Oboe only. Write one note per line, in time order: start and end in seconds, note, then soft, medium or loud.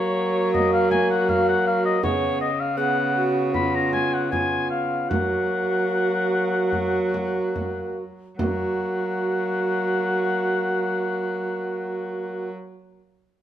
0.00 0.53 C#5 loud
0.54 0.72 D#5 loud
0.73 0.90 F5 loud
0.91 1.09 G#5 loud
1.11 1.31 F#5 loud
1.29 1.47 F5 loud
1.49 1.66 F#5 loud
1.67 1.84 F5 loud
1.86 2.03 D#5 loud
2.04 2.40 C#5 loud
2.41 2.62 D#5 loud
2.60 2.76 F5 loud
2.77 3.26 F#5 loud
3.55 3.77 B5 loud
3.75 3.93 A#5 loud
3.93 4.15 G#5 loud
4.14 4.31 F#5 loud
4.31 4.70 G#5 loud
4.70 5.11 F5 loud
5.10 7.96 F#5 loud
8.38 12.50 F#5 loud